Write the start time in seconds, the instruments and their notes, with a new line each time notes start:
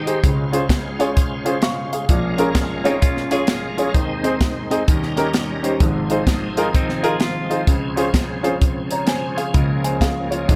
Already playing: grand piano G#1 G#2, tonewheel organ G#3 D#4 G4 C5, clean electric guitar D#4 G4
0.06 grand piano D#4 G4 G#4 C5, closed hi-hat
0.22 grand piano C#2 C#3, tonewheel organ C#4 F4, kick, closed hi-hat
0.52 grand piano C#4 F4 G#4 C5, closed hi-hat
0.69 kick, snare, closed hi-hat
0.99 grand piano C#4 F4 G#4 C#5, closed hi-hat
1.17 kick, closed hi-hat
1.45 grand piano C#4 F4 G#4 C5, closed hi-hat
1.62 grand piano F5 C#6, snare, closed hi-hat
1.93 grand piano G#4 F5, closed hi-hat
2.08 grand piano A#1 A#2, tonewheel organ G#3 C#4 F4 A#4, kick, closed hi-hat
2.38 grand piano C#4 F4 G#4 A#4, closed hi-hat
2.55 kick, snare, closed hi-hat
2.84 clean electric guitar C4 D#4, grand piano C#4 F4 G#4 C#5, closed hi-hat
3.02 clean electric guitar C#4 F4, kick, closed hi-hat
3.17 snare
3.31 grand piano C#4 F4 G#4 C#5, clean electric guitar F4 G#4, closed hi-hat
3.47 snare, closed hi-hat
3.77 grand piano C#4 F4 G#4 C#5, closed hi-hat
3.94 grand piano D#2 D#3, tonewheel organ D#3 C4 D#4 C5, kick, closed hi-hat
4.24 grand piano C4 D#4 G#4 C5, closed hi-hat
4.41 kick, snare, closed hi-hat
4.71 grand piano C4 D#4 G#4 D#5, closed hi-hat
4.88 grand piano D#2 D#3, tonewheel organ G3 C#4 A#4, kick, closed hi-hat
5.03 snare
5.17 grand piano C#4 D#4 G4 A#4, snare, closed hi-hat
5.34 snare, closed hi-hat
5.63 grand piano C#4 D#4 G4 C5, closed hi-hat
5.79 grand piano G#1 G#2, tonewheel organ F3 C4 G#4, kick, closed hi-hat
6.10 grand piano D#4 F4 G#4 C5, closed hi-hat
6.27 kick, snare, closed hi-hat
6.57 grand piano D#4 F4 G#4 A#4, closed hi-hat
6.75 clean electric guitar C4 D#4, kick, closed hi-hat
6.89 snare
7.03 grand piano D#4 F4 G#4 A#4, clean electric guitar F4 G#4, closed hi-hat
7.20 clean electric guitar F4, snare, closed hi-hat
7.50 grand piano D#4 F4 G#4 C5, closed hi-hat
7.67 grand piano C#2 C#3, tonewheel organ C#4, kick, closed hi-hat
7.96 grand piano C#4 F4 G#4 C5, closed hi-hat
8.14 kick, snare, closed hi-hat
8.43 grand piano C#4 F4 G#4 C5, closed hi-hat
8.62 kick, closed hi-hat
8.91 grand piano C#5 A#5, closed hi-hat
9.07 grand piano C5 G#5, snare, closed hi-hat
9.37 grand piano G#4 F5, closed hi-hat
9.54 grand piano C#2 C#3, tonewheel organ C#2 A#3, kick, closed hi-hat
9.84 grand piano C5 G#5, closed hi-hat
10.01 grand piano G#4 F5, kick, snare, closed hi-hat
10.31 grand piano F4 C#5, closed hi-hat
10.48 grand piano G#1 G#2, tonewheel organ G#2 G#3, kick, closed hi-hat